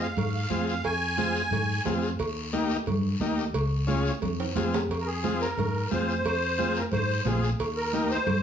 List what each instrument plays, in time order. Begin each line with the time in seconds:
0.02 accordion F5
0.17 fingered electric bass G#2, cowbell, high conga, low conga, long guiro
0.34 accordion F5
0.50 fingered electric bass F2, transistor combo organ C4 F4 G#4, high conga, short guiro
0.67 accordion F5, short guiro
0.84 fingered electric bass F2, accordion G#5, cowbell, high conga, long guiro
1.18 transistor combo organ C4 F4 G#4, high conga, short guiro
1.35 short guiro
1.51 fingered electric bass G#2, cowbell, high conga, low conga, long guiro
1.85 fingered electric bass F2, transistor combo organ C4 F4 G#4, high conga, low conga, low timbale, short guiro
2.02 short guiro
2.19 fingered electric bass D#2, cowbell, high conga, long guiro
2.53 transistor combo organ A#3 D#4 G4, high conga, short guiro
2.69 short guiro
2.86 fingered electric bass G2, cowbell, high conga, low conga, long guiro
3.20 fingered electric bass D#2, transistor combo organ A#3 D#4 G4, high conga, short guiro
3.38 short guiro
3.54 fingered electric bass C#2, cowbell, high conga, long guiro
3.87 transistor combo organ C#4 F4 G#4, high conga, short guiro
4.05 short guiro
4.22 fingered electric bass F2, cowbell, high conga, low conga, long guiro
4.40 high timbale
4.55 fingered electric bass F2, transistor combo organ C4 F4 G#4, high conga, low conga, low timbale, short guiro
4.74 low timbale, short guiro
4.89 fingered electric bass F2, cowbell, high conga, long guiro
5.00 accordion A#4
5.06 accordion G#4
5.23 transistor combo organ C4 F4 G#4, high conga, short guiro
5.41 accordion A#4, short guiro
5.57 fingered electric bass G#2, cowbell, high conga, low conga, long guiro
5.91 fingered electric bass F2, transistor combo organ C4 F4 G#4, accordion C5, high conga, short guiro
6.09 short guiro
6.25 fingered electric bass F2, accordion C5, cowbell, high conga, long guiro
6.58 transistor combo organ C4 F4 G#4, high conga, short guiro
6.75 accordion A#4, short guiro
6.92 fingered electric bass G#2, accordion C5, cowbell, high conga, low conga, long guiro
7.25 fingered electric bass A#1, transistor combo organ C4 F4 G#4, accordion G#4, high conga, low conga, low timbale, short guiro
7.43 short guiro
7.60 fingered electric bass D#2, cowbell, high conga, long guiro
7.76 accordion A#4
7.93 transistor combo organ A#3 D#4 G4, high conga, short guiro
8.10 accordion C5, short guiro
8.27 fingered electric bass G2, cowbell, high conga, low conga, long guiro